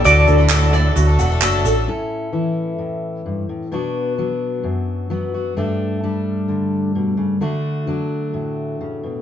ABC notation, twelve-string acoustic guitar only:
X:1
M:4/4
L:1/16
Q:1/4=130
K:D
V:1 name="Twelve-string acoustic guitar"
[D,F,A,DA]3 [A,DA] [D,F,A,DA]2 [F,A,DA]3 [A,DA] [F,A,DA] [A,DA] [D,F,A,DA]2 [F,A,DA]2 | z16 | z16 | z16 |
z16 |]